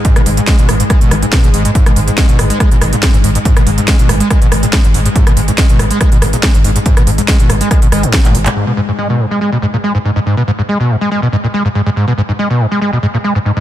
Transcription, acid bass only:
X:1
M:4/4
L:1/16
Q:1/4=141
K:G#m
V:1 name="Acid bass" clef=bass
G,, B,, G,, G,, G, B,, G,, G,, G, B,, G, G,, B,, B,, G,, G,, | G,, B,, G,, G,, G, B,, G,, G, G, B,, G,, A,, G, G,, G,, G,, | G,, B,, G,, G,, G, B,, G,, G, G, B,, G,, A,, G, G,, G,, G,, | G,, B,, G,, G,, G, B,, G,, G, G, B,, G,, A,, G, G,, G,, G,, |
G,, B,, G,, G,, G, B,, G,, G, z B,, G, G,, G, A,, B,, A,, | G,, B,, G,, G,, G, B,, G,, G, G, B,, G,, A,, G, G,, G,, G,, | G,, B,, G,, G,, G, B,, G,, G, G, B,, G,, A,, G, G,, G,, G,, | G,, B,, G,, G,, G, B,, G,, G, G, B,, G,, A,, G, G,, G,, G,, |]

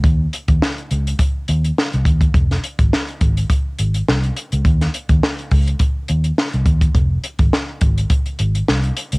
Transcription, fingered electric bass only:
X:1
M:4/4
L:1/16
Q:"Swing 16ths" 1/4=104
K:Fm
V:1 name="Fingered electric bass" clef=bass
E,,2 z E,, z2 D,,2 z2 E,,2 z C,, E,,2 | F,,,2 z A,,, z2 A,,,2 z2 A,,,2 C,,2 z D,, | E,,2 z E,, z2 D,,2 z2 E,,2 z C,, E,,2 | F,,,2 z A,,, z2 A,,,2 z2 A,,,2 C,,2 z D,, |]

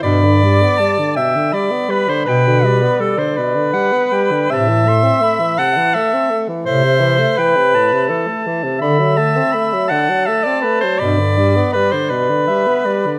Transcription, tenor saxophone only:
X:1
M:3/4
L:1/16
Q:1/4=82
K:G
V:1 name="Tenor saxophone" clef=bass
B,, D, G, B, G, D, B,, D, G, B, G, D, | B,, D, G, B, G, D, B,, D, G, B, G, D, | C, E, A, C A, E, C, E, A, C A, E, | A,, C, E, A, E, C, A,, C, E, A, E, C, |
D, F, A, C A, F, D, F, A, C A, F, | B,, D, G, B, G, D, B,, D, G, B, G, D, |]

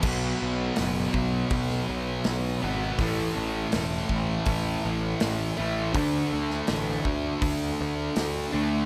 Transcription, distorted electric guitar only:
X:1
M:4/4
L:1/8
Q:1/4=81
K:Bm
V:1 name="Distorted electric guitar" clef=bass
[B,,F,B,]6- [B,,F,B,] [B,,F,B,] | [A,,E,A,]6- [A,,E,A,] [A,,E,A,] | [D,A,D]6- [D,A,D] [D,A,D] |]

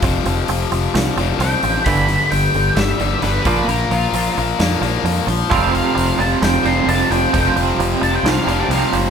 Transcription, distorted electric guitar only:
X:1
M:4/4
L:1/8
Q:1/4=132
K:Flyd
V:1 name="Distorted electric guitar" clef=bass
[F,,C,F,]4- [F,,C,F,] [F,,C,F,] [F,,C,F,]2 | [G,,D,G,]4- [G,,D,G,] [G,,D,G,] [G,,D,G,] [_B,,F,_B,]- | [_B,,F,_B,]4 [B,,F,B,] [B,,F,B,]2 z | [F,,C,F,]4- [F,,C,F,] [F,,C,F,] [F,,C,F,]2 |
[F,,C,F,]4- [F,,C,F,] [F,,C,F,] [F,,C,F,]2 |]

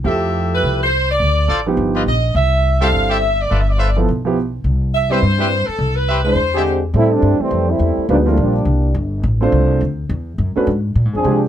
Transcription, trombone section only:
X:1
M:4/4
L:1/8
Q:"Swing" 1/4=209
K:C
V:1 name="Trombone section"
z8 | z8 | z8 | z8 |
z8 | z4 z [D,^G,^B,=G]2 z | [G,A,CE] [G,A,CD]2 [E,G,A,C]2 [G,A,CE]3 | [F,G,_B,D] [F,A,CE] [F,G,B,D]4 z2 |
z8 | z4 z [F,CD_A]2 z |]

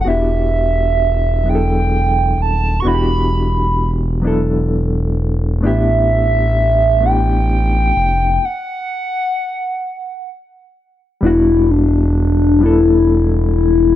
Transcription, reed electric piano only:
X:1
M:6/8
L:1/8
Q:3/8=43
K:Em
V:1 name="Reed electric piano"
[B,DEFG]2 z [F,B,DE^GA]2 z | [B,DEFG]2 z [F,B,DEA]2 z | [A,B,DEG]2 z [A,B,DEG]2 z | z6 |
[G,B,DEF]2 z [G,B,DEA]2 z |]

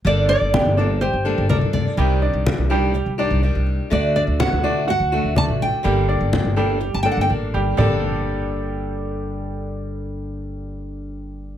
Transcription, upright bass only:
X:1
M:4/4
L:1/16
Q:1/4=124
K:Gm
V:1 name="Upright bass" clef=bass
G,,,3 G,,,2 G,,,4 G,,,2 G,,,2 G,,2 z | C,,3 C,,2 C,,4 C,,2 C,,2 C,,2 z | D,,3 D,,2 D,,4 D,,2 D,,2 A,,,2 z | G,,,3 G,,,2 G,,,4 G,,,2 G,,, A,,,2 G,,,2 |
G,,,16- | G,,,16 |]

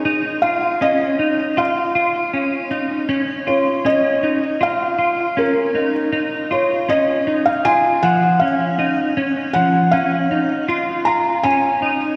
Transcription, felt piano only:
X:1
M:4/4
L:1/16
Q:1/4=79
K:Db
V:1 name="Felt piano"
z2 f2 e4 f6 z2 | z2 d2 e4 f4 B3 z | z2 d2 e3 f a2 g2 f3 z | z2 g2 f4 z2 b2 a4 |]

